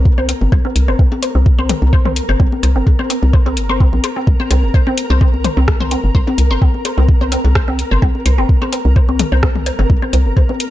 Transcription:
Already playing: C2 A#4
0.05 kick
0.18 C5, high conga
0.29 C4, closed hi-hat
0.41 G1, high conga
0.52 C2 C5, kick, cowbell
0.65 C4, high conga
0.76 C2, closed hi-hat
0.88 G1 C5, high conga
0.99 C4, kick
1.12 cowbell, high conga
1.23 C5, closed hi-hat
1.35 C2 C4, high conga
1.46 kick
1.59 C5, high conga
1.69 C4, closed hi-hat, mid tom, cowbell
1.82 C2, high conga
1.93 C5, kick
2.05 C4, mid tom, high conga
2.16 closed hi-hat
2.29 G1 C5, cowbell, high conga
2.40 C2 C4, kick
2.52 high conga
2.63 C2 C5, closed hi-hat
2.76 G1 C4, high conga
2.87 kick, cowbell
2.99 C5, high conga
3.10 C4, closed hi-hat
3.23 C2, high conga
3.33 C5, kick
3.46 C4, cowbell, high conga
3.57 G1, closed hi-hat
3.69 C5, high conga
3.80 C4, kick
3.93 A#1, high conga
4.04 C5, closed hi-hat, cowbell
4.16 C4, high conga
4.27 C2, kick
4.40 C5, high conga
4.51 C2 C4, closed hi-hat, cowbell
4.63 G1, high conga
4.74 C5, kick
4.87 C4, high conga
4.98 closed hi-hat
5.10 C2 C5, cowbell, high conga
5.21 C4, kick
5.34 high conga
5.44 C5, closed hi-hat, mid tom
5.57 C2 C4, high conga
5.68 kick, cross-stick, cowbell
5.80 C5, mid tom, high conga
5.91 C4, closed hi-hat
6.04 G1, high conga
6.15 C2 C5, kick
6.27 C4, cowbell, high conga
6.38 C2, closed hi-hat
6.51 G1 C5, high conga
6.62 C4, kick
6.74 high conga
6.85 C5, closed hi-hat, cowbell
6.98 C2 C4, high conga
7.08 kick
7.21 C5, high conga
7.32 C4, closed hi-hat
7.45 C2, cowbell, high conga
7.55 C5, kick, cross-stick
7.68 C4, high conga
7.79 closed hi-hat
7.91 G1 C5, high conga
8.02 C2 C4, kick, cowbell
8.15 high conga
8.26 C2 C5, closed hi-hat
8.38 G1 C4, high conga
8.49 kick
8.62 C5, cowbell, high conga
8.73 C4, closed hi-hat
8.85 C2, high conga
8.96 C5, kick
9.09 C4, high conga
9.19 closed hi-hat, mid tom, cowbell
9.32 C2 C5, high conga
9.43 C4, kick, cross-stick
9.56 mid tom, high conga
9.66 C5, closed hi-hat
9.79 G1 C4, cowbell, high conga
9.90 C2, kick
10.02 C5, high conga
10.13 C2 C4, closed hi-hat
10.26 G1, high conga
10.37 C5, kick, cowbell
10.49 C4, high conga
10.60 closed hi-hat

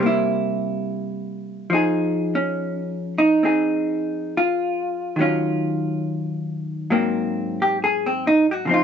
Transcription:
Already playing: C3
0.00 G3 A#3
0.06 E4
1.70 F3 D#4
1.74 G#4
2.35 C#4
3.18 D#4
3.43 C4 D#4 G#4
4.37 F4
5.16 D#3 F#3
5.21 C#4 F4
6.90 G#2 F#3 A#3 C4
7.62 G4
7.84 G#4
8.06 C4
8.27 D#4
8.51 F#4
8.65 C#3 F3 C4
8.71 D#4 F4

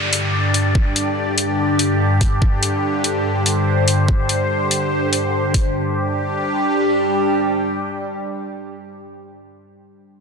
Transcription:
Already playing: G2 D3 D4 G4 D5, downlifter
0.13 closed hi-hat
0.54 closed hi-hat
0.75 kick
0.96 closed hi-hat
1.38 closed hi-hat
1.79 closed hi-hat
2.21 kick, closed hi-hat
2.42 C5, kick
2.63 closed hi-hat
3.04 closed hi-hat
3.46 closed hi-hat
3.88 closed hi-hat
4.08 kick
4.29 closed hi-hat
4.71 closed hi-hat
5.13 closed hi-hat
5.54 kick, closed hi-hat
5.75 G3 D4 G4

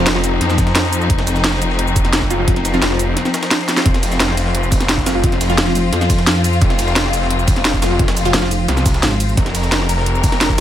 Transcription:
Already playing: F3 C4 D#4
0.06 F1, snare, closed hi-hat
0.15 F3 C4 F4, snare
0.24 closed hi-hat, cabasa
0.41 F2, snare, closed hi-hat
0.50 snare, cabasa
0.58 kick, snare, closed hi-hat, cabasa
0.67 snare, closed hi-hat
0.75 snare, closed hi-hat
0.84 snare
0.93 closed hi-hat, cabasa
1.01 cabasa
1.10 F1, kick, closed hi-hat
1.19 snare, closed hi-hat
1.27 snare, closed hi-hat, cabasa
1.36 snare, cabasa
1.44 snare, closed hi-hat
1.53 snare
1.62 closed hi-hat, cabasa
1.70 snare
1.79 closed hi-hat
1.87 cabasa
1.96 kick, closed hi-hat, cabasa
2.05 snare, closed hi-hat
2.13 snare, closed hi-hat
2.22 kick, snare
2.30 F3 C4 F4, snare, closed hi-hat, cabasa
2.39 F3 C4 F4
2.48 F1, kick, closed hi-hat
2.56 snare, closed hi-hat
2.65 snare, closed hi-hat, cabasa
2.74 F3 C4 F4, snare, cabasa
2.82 F1, snare, closed hi-hat
2.91 F3 C4 F4, snare
2.99 closed hi-hat, cabasa
3.17 snare, closed hi-hat
3.25 snare, cabasa
3.34 snare, closed hi-hat, cabasa
3.43 snare, closed hi-hat
3.51 snare, closed hi-hat
3.60 snare
3.68 snare, closed hi-hat, cabasa
3.77 snare, closed hi-hat, cabasa
3.86 F1 F4, kick, closed hi-hat
3.94 snare, closed hi-hat
4.03 snare, closed hi-hat, ride, cabasa
4.12 snare, cabasa
4.20 snare, closed hi-hat
4.29 snare
4.37 closed hi-hat, ride, cabasa
4.46 snare
4.55 closed hi-hat
4.63 cabasa
4.72 kick, closed hi-hat, ride, cabasa
4.80 snare, closed hi-hat
4.89 snare, closed hi-hat
4.98 kick, snare
5.06 F3 C4 F4, snare, closed hi-hat, ride, cabasa
5.15 F3 C4 F4
5.24 F1, kick, closed hi-hat
5.32 snare, closed hi-hat
5.41 snare, closed hi-hat, ride, cabasa
5.49 F3 C4 F4, snare, cabasa
5.58 F1, snare, closed hi-hat
5.67 F3 C4 F4, snare
5.75 closed hi-hat, ride, cabasa
5.93 F2, snare, closed hi-hat
6.01 snare, cabasa
6.10 kick, snare, closed hi-hat, ride, cabasa
6.18 snare, closed hi-hat
6.27 snare, closed hi-hat
6.36 snare
6.44 closed hi-hat, ride, cabasa
6.53 cabasa
6.62 F1, kick, closed hi-hat
6.70 snare, closed hi-hat
6.79 snare, closed hi-hat, ride, cabasa
6.87 snare, cabasa
6.96 snare, closed hi-hat
7.05 snare
7.13 closed hi-hat, ride, cabasa
7.22 snare
7.30 closed hi-hat
7.39 cabasa
7.48 kick, closed hi-hat, ride, cabasa
7.56 snare, closed hi-hat
7.65 snare, closed hi-hat
7.74 kick, snare
7.82 F3 C4 F4, snare, closed hi-hat, ride, cabasa
7.91 F3 C4 F4
7.99 F1, kick, closed hi-hat
8.08 snare, closed hi-hat
8.17 closed hi-hat, ride, cabasa
8.25 F3 C4 F4, closed hi-hat, cabasa
8.34 F1, snare, closed hi-hat
8.42 F3 C4 F4, snare
8.51 closed hi-hat, ride, cabasa
8.68 C2, snare, closed hi-hat
8.77 snare, cabasa
8.86 kick, snare, closed hi-hat, ride, cabasa
8.94 snare, closed hi-hat
9.03 G#1, snare, closed hi-hat
9.12 snare
9.20 closed hi-hat, ride, cabasa
9.29 cabasa
9.37 F1 A#4, kick, closed hi-hat
9.46 snare, closed hi-hat
9.55 snare, closed hi-hat, ride, cabasa
9.63 snare, cabasa
9.72 snare, closed hi-hat
9.81 snare
9.89 closed hi-hat, ride, cabasa
9.98 snare
10.06 closed hi-hat
10.15 cabasa
10.24 kick, closed hi-hat, ride, cabasa
10.32 snare, closed hi-hat
10.41 snare, closed hi-hat
10.49 kick, snare

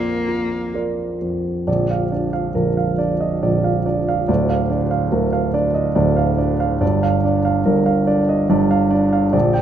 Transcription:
Already playing: A#1 F2 A#3 F4 A#4 D5
0.28 F4
0.74 F4 A#4 D5
1.22 F2
1.67 A#0 A#1 D5
1.90 F5
2.12 D4 D5
2.33 F5
2.55 A#0 A#1 A#4
2.77 F5
2.98 D4 D5
3.21 D#5
3.43 A#0 A#1 D5
3.64 F5
3.86 D4 D5
4.08 F5
4.28 D1 D2 D5
4.49 F5
4.70 D4 D5
4.91 F5
5.12 D1 D2 A#4
5.33 F5
5.54 D4 D5
5.74 D#5
5.95 D1 D2 D5
6.17 F5
6.38 D4 D5
6.60 F5
6.81 G1 G2 D5
7.03 F5
7.24 D4 D5
7.45 F5
7.66 G1 G2 A#4
7.86 F5
8.07 D4 D5
8.29 D#5
8.50 G1 G2 D5
8.71 F5
8.91 D4 D5
9.13 F5
9.33 A#0 A#1 D5
9.53 G5

